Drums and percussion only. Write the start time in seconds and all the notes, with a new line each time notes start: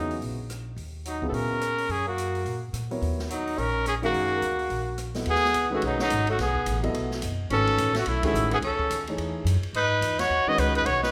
0.11 open hi-hat
0.22 open hi-hat
0.50 cross-stick, closed hi-hat
0.77 open hi-hat
1.05 closed hi-hat
1.22 kick
1.34 open hi-hat
1.61 cross-stick, closed hi-hat
1.78 open hi-hat
1.89 open hi-hat
2.18 closed hi-hat
2.35 open hi-hat
2.46 open hi-hat
2.74 cross-stick, closed hi-hat
2.91 open hi-hat
3.02 open hi-hat
3.19 snare
3.30 closed hi-hat
3.47 open hi-hat
3.58 open hi-hat
3.86 cross-stick, closed hi-hat
4.03 open hi-hat
4.14 open hi-hat
4.42 closed hi-hat
4.59 open hi-hat
4.70 open hi-hat
4.98 cross-stick, closed hi-hat
5.14 snare, open hi-hat
5.26 ride
5.35 snare
5.45 snare
5.54 hi-hat pedal, ride
5.82 ride
5.99 snare
6.10 hi-hat pedal, ride
6.27 ride
6.39 snare, ride
6.55 kick
6.66 hi-hat pedal, ride
6.83 ride
6.94 ride
7.11 snare
7.22 hi-hat pedal, ride
7.50 ride
7.67 ride
7.78 hi-hat pedal, ride
7.94 snare, ride
8.06 ride
8.23 kick, ride
8.35 hi-hat pedal
8.51 ride
8.62 ride
8.79 kick
8.90 hi-hat pedal, ride
9.07 ride
9.18 ride
9.46 hi-hat pedal, ride
9.63 ride
9.74 ride
10.02 hi-hat pedal, ride
10.19 snare, ride
10.58 hi-hat pedal, ride
10.75 ride
10.86 ride
11.03 snare